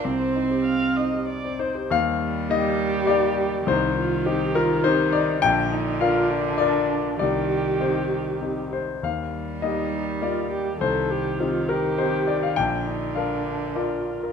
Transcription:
<<
  \new Staff \with { instrumentName = "Grand piano" } { \time 3/4 \key c \minor \tempo 4 = 101 << { r2 r8 c''8 | f''4 ees''4 d''4 | c''4. bes'8 c''8 d''8 | g''4 f''4 d''4 |
d''4 c''4 r8 c''8 | f''4 ees''4 d''4 | c''4. bes'8 c''8 d''16 f''16 | g''4 f''4 d''8. bes'16 | } \\ { c,16 c'16 ees'16 g'8 c'16 ees'16 g'8 c'16 ees'16 g'16 | ees,4 <bes ees' g'>4 <bes ees' g'>4 | c,4 <c' ees' g'>4 <c' ees' g'>4 | bes,,4 <d' f' bes'>4 <d' f' bes'>4 |
c,4 <c' ees' g'>4 <c' ees' g'>4 | ees,4 <bes ees' g'>4 <bes ees' g'>4 | c,4 <c' ees' g'>4 <c' ees' g'>4 | bes,,4 <d' f' bes'>4 <d' f' bes'>4 | } >> }
  \new Staff \with { instrumentName = "Viola" } { \time 3/4 \key c \minor c''4 f''8 ees''8 d''8 c''8 | r4 g'2 | ees'8 f'8 g'8 f'8 ees'4 | d'8 ees'8 f'8 d'4. |
g'2~ g'8 r8 | r4 ees'4 f'8 g'8 | a'8 g'8 f'8 g'4. | d'8 ees'8 d'4 f'4 | }
  \new Staff \with { instrumentName = "Cello" } { \clef bass \time 3/4 \key c \minor c'2~ c'8 r8 | g2. | ees2. | d2. |
ees2~ ees8 r8 | g2. | ees2. | d2. | }
>>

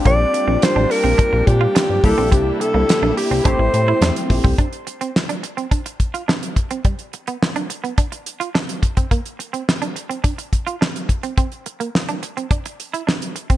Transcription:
<<
  \new Staff \with { instrumentName = "Alto saxophone" } { \time 4/4 \key bes \lydian \tempo 4 = 106 d''4 c''8 bes'4 g'4 a'8 | g'8 a'4 g'8 c''4. r8 | r1 | r1 |
r1 | r1 | }
  \new Staff \with { instrumentName = "Analog polysynth" } { \time 4/4 \key bes \lydian <c' d' f' g'>2.~ <c' d' f' g'>8 <bes d' e' g'>8~ | <bes d' e' g'>2 <a c' e' g'>2 | r1 | r1 |
r1 | r1 | }
  \new Staff \with { instrumentName = "Clean electric guitar" } { \time 4/4 \key bes \lydian bes16 r8 c'16 r16 d'16 r16 c'16 d'16 r8 f'16 d'16 r8 c'16 | c'16 r8 bes16 r16 d'16 r16 c'16 d'16 r8 e'16 d'16 r8 c'16 | d'16 r8 c'16 r16 d'16 r16 c'16 d'16 r8 f'16 d'16 r8 c'16 | g16 r8 b16 r16 d'16 r16 b16 d'16 r8 f'16 d'16 r8 c'16 |
bes16 r8 c'16 r16 d'16 r16 c'16 d'16 r8 f'16 d'16 r8 c'16 | c'16 r8 bes16 r16 d'16 r16 c'16 d'16 r8 e'16 d'16 r8 c'16 | }
  \new Staff \with { instrumentName = "String section" } { \time 4/4 \key bes \lydian << { <bes d'>1~ | <bes d'>2 a2 | r1 | r1 |
r1 | r1 | } \\ { g2.~ g8 <c e'>8~ | <c e'>2 c'2 | r1 | r1 |
r1 | r1 | } >> }
  \new Staff \with { instrumentName = "Analog synth bass" } { \clef bass \time 4/4 \key bes \lydian bes,,8 r16 bes,,16 r16 a,,16 r16 bes,,16 r16 bes,,16 bes,8 r16 g,16 c,16 bes,,16 | c,8 r16 c,16 r16 bes,,16 r16 c,16 a,,16 a,,16 a,8 e,16 r16 bes,,16 c,16 | r1 | r1 |
r1 | r1 | }
  \new DrumStaff \with { instrumentName = "Drums" } \drummode { \time 4/4 <hh bd>8 hh8 <hh sn>8 hho8 <hh bd>8 <hh bd>8 <hh sn>8 <hho bd>8 | <hh bd>8 hh8 <hh sn>8 hho8 <hh bd>8 hh8 <hh sn>16 hh16 <hho bd>16 bd16 | <hh bd>16 hh16 hh16 hh16 sn16 hh16 hh16 hh16 <hh bd>16 hh16 <hh bd>16 hh16 sn16 hh16 <hh bd>16 hh16 | <hh bd>16 hh16 hh16 hh16 sn16 hh16 hh16 hh16 <hh bd>16 hh16 hh16 hh16 sn16 hh16 <hh bd>16 <hh bd>16 |
<hh bd>16 hh16 hh16 hh16 sn16 hh16 hh16 hh16 <hh bd>16 hh16 <hh bd>16 hh16 sn16 hh16 <hh bd>16 hh16 | <hh bd>16 hh16 hh16 hh16 sn16 hh16 hh16 hh16 <hh bd>16 hh16 hh16 hh16 sn16 hh16 hh16 <hh bd>16 | }
>>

